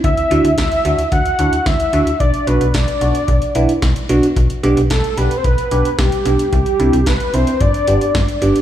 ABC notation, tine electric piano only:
X:1
M:4/4
L:1/8
Q:1/4=111
K:G
V:1 name="Tine electric piano"
z [DEF] z [DEF] z [DEF] z [DEF] | z [B,DF] z [B,DF] z [B,DE] z [B,DF] | z [B,DG] z [B,DG] z [B,DG] z [B,DG] | z [CDE] z [CDE] z [B,DG] z [B,DG] |]